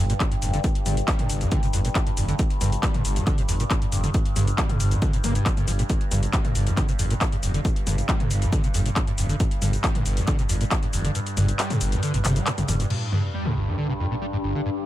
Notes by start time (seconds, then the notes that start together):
Already playing: G2
0.00 G1
0.10 A#2, closed hi-hat, shaker
0.20 G3, kick, clap, closed hi-hat, shaker
0.32 G2, closed hi-hat
0.42 F1 G1, open hi-hat, shaker
0.53 D3, closed hi-hat, shaker
0.64 G2, kick, closed hi-hat, shaker
0.75 closed hi-hat
0.86 G1 G2, open hi-hat, mid tom, shaker
0.97 closed hi-hat, shaker
1.08 G3, kick, clap, closed hi-hat, shaker
1.19 G2, closed hi-hat, mid tom
1.30 G1, open hi-hat, shaker
1.41 G2, closed hi-hat, shaker
1.52 D3, kick, closed hi-hat, shaker
1.63 G1 C3, closed hi-hat, shaker
1.73 G1 F2, open hi-hat, shaker
1.85 A#2, closed hi-hat, shaker
1.95 G3, kick, clap, closed hi-hat, shaker
2.06 G2, closed hi-hat
2.17 F1 G1, open hi-hat, shaker
2.28 D3, closed hi-hat, shaker
2.39 G2, kick, closed hi-hat, shaker
2.50 closed hi-hat
2.61 G1 G2, open hi-hat, mid tom, shaker
2.72 closed hi-hat, shaker
2.83 G3, kick, clap, closed hi-hat, shaker
2.94 G2, closed hi-hat, mid tom
3.05 G1, open hi-hat, shaker
3.16 G2, closed hi-hat, shaker
3.27 D3, kick, clap, closed hi-hat, shaker
3.38 G1 C3, closed hi-hat, shaker
3.48 G1 F2, open hi-hat, shaker
3.60 A#2, closed hi-hat, shaker
3.70 G3, kick, clap, closed hi-hat, shaker
3.82 G2, closed hi-hat
3.92 F1 G1, open hi-hat, shaker
4.04 D3, closed hi-hat, shaker
4.14 G2, kick, closed hi-hat, shaker
4.26 closed hi-hat
4.36 G1 G2, open hi-hat, mid tom, shaker
4.47 closed hi-hat, shaker
4.58 G3, kick, clap, closed hi-hat, shaker
4.69 G2, closed hi-hat, mid tom
4.80 G1, open hi-hat, shaker
4.91 G2, closed hi-hat, shaker
5.02 D3, kick, closed hi-hat, shaker
5.13 G1 C3, closed hi-hat, shaker
5.24 G1 A#3, open hi-hat, mid tom, shaker
5.35 G2, closed hi-hat, shaker
5.46 G3, kick, clap, closed hi-hat, shaker
5.57 G2, closed hi-hat, mid tom, shaker
5.68 G1 F3, open hi-hat, shaker
5.79 A#2, closed hi-hat, shaker
5.90 G2, kick, closed hi-hat, shaker
6.01 closed hi-hat
6.11 G1 G2, open hi-hat, mid tom, shaker
6.23 closed hi-hat, shaker
6.33 G3, kick, clap, closed hi-hat, shaker
6.45 G2, closed hi-hat, mid tom
6.55 G1, open hi-hat, shaker
6.67 G2, closed hi-hat, shaker
6.77 D3, kick, clap, closed hi-hat, shaker
6.89 G1 C3, closed hi-hat, shaker
6.99 G1 F2, open hi-hat, shaker
7.11 A#2, closed hi-hat, shaker
7.21 G3, kick, clap, closed hi-hat, shaker
7.32 G2, closed hi-hat
7.43 F1 G1, open hi-hat, shaker
7.54 D3, closed hi-hat, shaker
7.65 G2, kick, closed hi-hat, shaker
7.76 closed hi-hat
7.87 G1 G2, open hi-hat, mid tom, shaker
7.98 closed hi-hat, shaker
8.09 G3, kick, clap, closed hi-hat, shaker
8.20 G2, closed hi-hat, mid tom
8.30 G1, open hi-hat, shaker
8.42 G2, closed hi-hat, shaker
8.52 D3, kick, closed hi-hat, shaker
8.64 G1 C3, closed hi-hat, shaker
8.74 G1 F2, open hi-hat, shaker
8.86 A#2, closed hi-hat, shaker
8.96 G3, kick, clap, closed hi-hat, shaker
9.07 G2, closed hi-hat
9.18 F1 G1, open hi-hat, shaker
9.29 D3, closed hi-hat, shaker
9.40 G2, kick, closed hi-hat, shaker
9.51 closed hi-hat
9.62 G1 G2, open hi-hat, mid tom, shaker
9.73 closed hi-hat, shaker
9.84 G3, kick, clap, closed hi-hat, shaker
9.95 G2, closed hi-hat, mid tom
10.06 G1, open hi-hat, shaker
10.17 G2, closed hi-hat, shaker
10.27 D3, kick, clap, closed hi-hat, shaker
10.39 G1 C3, closed hi-hat, shaker
10.49 G1 F2, open hi-hat, shaker
10.61 A#2, closed hi-hat, shaker
10.71 G3, kick, clap, closed hi-hat, shaker
10.83 G2, closed hi-hat
10.93 F1 G1, open hi-hat, shaker
11.05 D3, closed hi-hat, shaker
11.15 G2, closed hi-hat, shaker
11.27 closed hi-hat, shaker
11.37 G1 G2, open hi-hat, mid tom, shaker
11.48 closed hi-hat, shaker
11.59 G3, clap, closed hi-hat, shaker
11.70 G2, closed hi-hat, mid tom, shaker
11.81 G1, open hi-hat, shaker
11.92 G2, closed hi-hat, shaker
12.03 D3, closed hi-hat, shaker
12.14 G1 C3, closed hi-hat, shaker
12.25 G1 C3, clap, open hi-hat, mid tom, shaker
12.36 G3, closed hi-hat, shaker
12.46 G2, clap, closed hi-hat, shaker
12.58 G1, closed hi-hat, mid tom, shaker
12.68 F1 G2, open hi-hat, mid tom, shaker
12.80 G2, closed hi-hat, shaker
12.90 G2 D4, crash, sub drop
13.12 G2 G4, mid tom
13.34 G3
13.45 G2, mid tom
13.56 G1
13.63 G5
13.67 G2
13.78 D3
13.89 C3
14.00 F2
14.11 A#2
14.22 G3
14.33 G2
14.44 G1
14.55 D3
14.65 G2